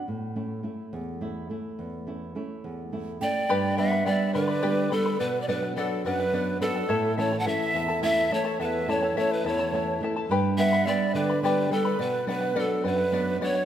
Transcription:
0.08 A2
0.36 A3 C#4 E4
0.63 A3 C#4 E4
0.93 E2
1.21 A3 C#4 E4
1.50 A3 C#4 E4
1.79 E2
2.07 A3 C#4 E4
2.35 A3 C#4 E4
2.64 E2
2.92 A3 C#4 E4
3.21 A3 C#4 E4 D5 G5
3.49 G2 G4 B4 D5 G5 B5
3.77 G3 B3 D4 B4 D5 E5 F#5 G5 B5
3.92 B4 D5 B5
4.06 G3 B3 D4 B4 D5 F#5 G5 B5
4.12 E5
4.33 D3 B4 D5 G5 B5
4.48 B4 D5 B5
4.62 G3 B3 D4 G4 B4 D5 G5 B5
4.90 G3 B3 D4 A4 B4 D5 G5 B5
5.06 B4 D5 B5
5.19 B2 B4 D5 F#5
5.41 D5
5.48 F#3 B3 D4 B4 D5 F#5
5.63 D5 F#5
5.76 F#3 B3 D4 A4 B4 D5 F#5
6.05 F#2 B4 D5 F#5
6.20 D5 F#5
6.33 F#3 B3 D4 B4 D5 F#5
6.60 F#3 B3 D4 A4 B4 D5 F#5
6.76 D5 F#5
6.89 A2 E4 A4 C#5 E5 A5
7.17 E3 A3 C#4 E4 A4 C#5 E5 A5
7.32 E4 A4 A5
7.39 F#5 A5
7.46 E3 A3 C#4 E4 A4 E5 A5
7.74 E2 E4 A4 E5 A5
7.89 E4 A4 A5
8.02 E3 A3 C#4 E4 A4 C#5 E5 A5
8.31 E3 A3 C#4 E4 A4 C#5 E5 A5
8.45 E4 A4 A5
8.60 E2 E4 A4 B4 E5 F#5 A5
8.65 E5
8.88 E3 A3 C#4 E4 A4 C#5 D5 E5 A5
8.94 C#5
9.03 E4 A4 A5
9.15 E3 A3 C#4 E4 A4 C#5 E5 A5
9.32 B4
9.45 E2 E4 A4 C#5 E5 A5
9.59 E4 A4 A5
9.72 E3 A3 C#4 E4 A4 E5 A5
10.01 E3 A3 C#4 E4 A4 E5 A5
10.16 E4 A4 A5
10.29 G2 G4 B4 D5 G5 B5
10.57 G3 B3 D4 B4 D5 E5 F#5 G5 B5
10.73 B4 D5 B5
10.86 G3 B3 D4 B4 D5 E5 G5 B5
11.14 D3 B4 D5 G5 B5
11.30 B4 D5 B5
11.42 G3 B3 D4 G4 B4 D5 G5 B5
11.70 G3 B3 D4 A4 B4 D5 G5 B5
11.85 B4 D5 B5
11.98 B2 B4 D5 F#5
12.27 F#3 B3 D4 B4 D5 F#5
12.41 D5 F#5
12.55 F#3 B3 D4 A4 A#4 B4 D5 F#5
12.61 A4
12.84 F#2 B4 C#5 D5 F#5
12.90 B4
12.98 D5 F#5
13.12 F#3 B3 D4 B4 D5 F#5
13.40 F#3 B3 D4 B4 C#5 D5 F#5
13.55 D5 F#5

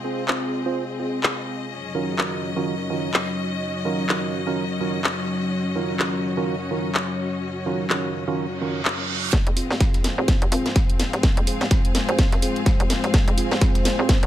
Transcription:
Already playing: C4 G#4 D#5 F5
0.04 C4 F4 G#4 C5
0.28 C4 F4 G#4 C5, clap
0.66 C4 F4 G#4 C5
1.00 C4 F4 G#4 C5
1.23 clap
1.71 F#3 C#4 D#5
1.95 D#3 C#4 F4 F#4 A#4
2.03 F#4
2.19 D#3 C#4 F4 F#4 A#4, clap
2.56 D#3 C#4 F4 F#4 A#4
2.90 D#3 C#4 F4 F#4 A#4
3.14 clap
3.85 D#3 C#4 F4 F#4 A#4
4.09 D#3 C#4 F4 F#4 A#4, clap
4.47 D#3 C#4 F4 F#4 A#4
4.80 D#3 C#4 F4 F#4 A#4
5.04 clap
5.52 C#5
5.76 D#3 C#4 F4 F#4 A#4
5.99 D#3 C#4 F4 F#4 A#4, clap
6.37 D#3 C#4 F4 F#4 A#4
6.71 D#3 C#4 F4 F#4 A#4
6.95 clap
7.66 D#3 C#4 F4 F#4 A#4
7.90 D#3 C#4 F4 F#4 A#4, clap
8.28 D#3 C#4 F4 F#4 A#4
8.38 reverse cymbal
8.61 D#3 C#4 F4 F#4 A#4
8.85 clap
9.33 F1 G#3 C4 F4 C5, kick, snare, closed hi-hat
9.47 F#1, closed hi-hat
9.55 C4 F4 G#4 C5 F5, closed hi-hat, open hi-hat
9.70 F1, snare
9.78 C4 F4 G#4, kick, snare, closed hi-hat
9.94 snare, closed hi-hat
10.04 snare, closed hi-hat, open hi-hat
10.18 F1 C4 F4 G#4 C5
10.28 kick, snare, closed hi-hat
10.42 F1, closed hi-hat
10.52 G#1 C4 F4 G#4 C5, closed hi-hat, open hi-hat
10.66 snare, closed hi-hat
10.76 kick, snare, closed hi-hat
10.90 closed hi-hat
11.00 snare, closed hi-hat, open hi-hat
11.13 F1, snare, closed hi-hat
11.23 kick, snare, closed hi-hat
11.37 F#1, closed hi-hat
11.47 C4 F4 G#4 C5, closed hi-hat, open hi-hat
11.61 F1, snare, closed hi-hat
11.71 C4 F4 G#4 C5, kick, snare, closed hi-hat
11.85 closed hi-hat
11.95 snare, closed hi-hat, open hi-hat
12.09 F1 C4 F4 G#4 C5, closed hi-hat
12.19 kick, snare, closed hi-hat, open hi-hat
12.32 G#1, snare, closed hi-hat
12.42 C4 F4 G#4 C5, closed hi-hat, open hi-hat
12.56 closed hi-hat
12.66 kick, snare, closed hi-hat
12.80 F1, closed hi-hat
12.90 snare, closed hi-hat, open hi-hat
13.04 F1, closed hi-hat
13.14 F1, kick, snare, closed hi-hat
13.28 F#1, closed hi-hat
13.38 C4 F4 G#4 C5, closed hi-hat, open hi-hat
13.51 F1, snare
13.61 C4 F4 G#4 C5, kick, snare, closed hi-hat
13.75 snare, closed hi-hat
13.85 snare, closed hi-hat, open hi-hat
13.99 F1 C4 F4 G#4 C5
14.09 kick, snare, closed hi-hat
14.23 F1, closed hi-hat

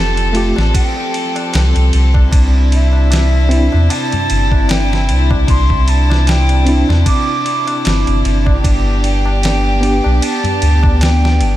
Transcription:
Already playing: F1 F3 C4 G4 A4 A5
0.16 ride, tabla na
0.33 A3 F4 G4, ride
0.56 A1, snare, tabla na
0.74 G5, kick, ride, tabla na
0.96 tabla na
1.14 ride
1.36 ride, tabla na
1.53 C2, snare, ride, tabla na
1.75 C2, ride, tabla na
1.93 C2, ride
2.14 kick, tabla na
2.32 C2 C3 D4 E4, kick, ride, tabla na
2.55 tabla na
2.72 E5, ride
2.93 tabla na
3.11 snare, ride, tabla na
3.33 tabla na
3.49 C4 D4 E4, ride
3.72 E2, tabla na
3.90 A5, ride, tabla na
4.12 ride, tabla na, tabla ge
4.30 G1, ride
4.52 kick, tabla na
4.69 G5, snare, ride, tabla na
4.92 snare, tabla na
5.09 C2, ride
5.31 kick, tabla na
5.47 C2 C6, kick, ride, tabla na
5.70 kick, tabla na
5.88 A5, ride
6.10 snare, tabla na
6.27 G5, snare, ride, tabla na
6.49 ride, tabla na
6.65 C4 D4 E4, ride
6.89 E2, snare, tabla na
7.06 D6, kick, ride, tabla na
7.28 tabla na
7.46 ride
7.67 ride, tabla na
7.85 G1, snare, ride, tabla na
8.07 G1, ride, tabla na
8.25 G1, ride
8.46 kick, tabla na
8.64 G1 B3 G4, kick, ride, tabla na
8.86 tabla na
9.04 G5, ride
9.26 tabla na
9.43 snare, ride, tabla na
9.64 tabla na
9.81 B3 D4 G4, ride
10.04 B1, tabla na
10.22 A5, ride, tabla na
10.43 ride, tabla na, tabla ge
10.62 D2, ride
10.83 kick, tabla na
11.01 G5, snare, ride, tabla na
11.22 snare, tabla na
11.41 G1, ride

